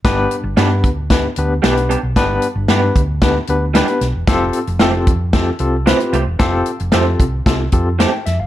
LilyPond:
<<
  \new Staff \with { instrumentName = "Tine electric piano" } { \time 4/4 \key g \mixolydian \tempo 4 = 113 <b d' g' b'>8 r8 <b d' g' b'>8 r8 <b d' g' b'>8 <b d' g' b'>8 <b d' g' b'>8 r8 | <b d' g' b'>8 r8 <b d' g' b'>8 r8 <b d' g' b'>8 <b d' g' b'>8 <b d' g' b'>8 r8 | <c' f' g' a'>8 r8 <c' f' g' a'>8 r8 <c' f' g' a'>8 <c' f' g' a'>8 <c' f' g' b'>8 r8 | <c' f' g' a'>8 r8 <c' f' g' a'>8 r8 <c' f' g' a'>8 <c' f' g' a'>8 a''16 g''16 e''16 f''16 | }
  \new Staff \with { instrumentName = "Tine electric piano" } { \clef bass \time 4/4 \key g \mixolydian g,4. r2 r8 | g,4. r2 r8 | r1 | r1 | }
  \new Staff \with { instrumentName = "Clean electric guitar" } { \time 4/4 \key g \mixolydian r4 <g b d' g'>8 r4. <g b d' g'>8 <g b d' g'>8 | r4 <g b d' g'>8 r4. <g b d' g'>8 r8 | r4 <f a c' g'>8 r4. <f a c' g'>8 <f a c' g'>8 | r4 <f a c' g'>8 r4. <f a c' g'>8 r8 | }
  \new Staff \with { instrumentName = "Fingered electric bass" } { \clef bass \time 4/4 \key g \mixolydian g,,8 r16 g,,16 g,8 d,4 d,8 b,,8. b,,16 | g,,8 r16 g,,16 g,8 d,4 d,8. r16 b,,16 e,,16 | f,,8 r16 f,,8. f,4 c,8. r16 c,16 e,,16 | f,,8 r16 f,,16 f,8 c,8 c,8 f,8. r16 f,16 fis,,16 | }
  \new DrumStaff \with { instrumentName = "Drums" } \drummode { \time 4/4 <hh bd sn>8 hh8 <hh sn>8 <hh bd>8 <hh bd sn>8 hh8 <hh sn>16 hh16 hh8 | <hh bd sn>8 hh8 <hh sn>8 <hh bd>8 <hh bd sn>8 hh8 <hh sn>16 hh16 <hh sn>8 | <hh bd sn>8 hh16 hh16 <hh sn>8 <hh bd>8 <hh bd sn>8 hh8 <hh sn>16 hh16 hh8 | <hh bd sn>8 hh16 hh16 <hh sn>8 <hh bd>8 <hh bd sn>8 <hh bd>8 <hh sn>8 <hh sn>8 | }
>>